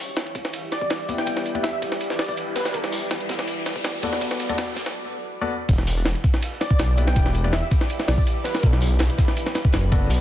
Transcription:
Already playing: E4 G4 B4 D5, riser
0.16 snare, closed hi-hat, ride
0.26 ride
0.35 kick, closed hi-hat, ride
0.45 snare
0.53 closed hi-hat, ride
0.72 D5, snare, closed hi-hat, ride
0.81 kick
0.90 snare, closed hi-hat, ride
1.09 B3 E4 G4 D5, closed hi-hat, ride
1.18 G5, snare
1.27 kick, closed hi-hat, ride
1.37 snare
1.46 closed hi-hat, ride
1.55 B3 E4 G4 D5, ride
1.63 E5, snare, closed hi-hat, ride
1.73 E5
1.82 kick, closed hi-hat, ride
1.92 snare
2.01 closed hi-hat, ride
2.10 snare
2.19 D5, snare, open hi-hat, ride
2.28 D5, kick
2.37 closed hi-hat, ride
2.56 B4, snare, closed hi-hat, ride
2.65 snare, closed hi-hat
2.74 F#4 A4 D5, kick, closed hi-hat, ride
2.84 snare
2.92 closed hi-hat, open hi-hat
3.11 snare, closed hi-hat, ride
3.20 ride
3.29 kick, snare, closed hi-hat, ride
3.39 snare
3.48 closed hi-hat, ride
3.66 snare, closed hi-hat, ride
3.76 kick
3.84 snare, closed hi-hat, ride
4.03 B3 F#4 A4 D5, closed hi-hat, ride
4.13 snare
4.21 kick, closed hi-hat, ride
4.31 snare
4.39 closed hi-hat, ride
4.49 B3 F#4 A4 D5, ride
4.58 snare, closed hi-hat, ride
4.76 kick, snare, closed hi-hat, ride
4.86 snare
5.41 B3 F#4 A4 D5
5.68 E1 E4 G4 B4 D5, kick, closed hi-hat, ride
5.78 snare
5.87 closed hi-hat, open hi-hat
6.05 E1, snare, closed hi-hat, ride
6.15 ride
6.24 kick, closed hi-hat, ride
6.34 snare
6.42 closed hi-hat, ride
6.61 D5, snare, closed hi-hat, ride
6.71 kick
6.79 B1, snare, closed hi-hat, ride
6.98 B3 E4 G4 D5, closed hi-hat, ride
7.07 G5, snare
7.16 E1, kick, closed hi-hat, ride
7.26 snare
7.35 closed hi-hat, ride
7.44 B3 E4 G4 D5, ride
7.53 E1 E5, snare, closed hi-hat, ride
7.62 E5
7.71 kick, closed hi-hat, ride
7.81 snare
7.90 closed hi-hat, ride
7.99 snare
8.08 B1 D5, snare, open hi-hat, ride
8.18 D5, kick
8.27 closed hi-hat, ride
8.44 B4, snare, closed hi-hat, ride
8.54 snare, closed hi-hat
8.63 B1 D4 F#4 A4, kick, closed hi-hat, ride
8.73 snare
8.81 closed hi-hat, open hi-hat
8.99 B1, snare, closed hi-hat, ride
9.10 ride
9.18 kick, snare, closed hi-hat, ride
9.28 snare
9.37 closed hi-hat, ride
9.46 snare
9.55 snare, closed hi-hat, ride
9.65 kick
9.73 F#1, snare, closed hi-hat, ride
9.92 B3 F#4 A4 D5, kick, closed hi-hat, ride
10.10 B1, closed hi-hat, open hi-hat

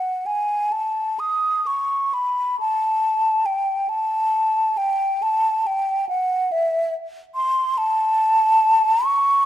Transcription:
Already playing: F#5
0.26 G#5
0.72 A5
1.19 D#6
1.67 C#6
2.14 B5
2.60 A5
3.46 G5
3.89 A5
4.78 G5
5.22 A5
5.67 G5
6.09 F#5
6.52 E5
7.35 C6
7.78 A5
9.05 C#6

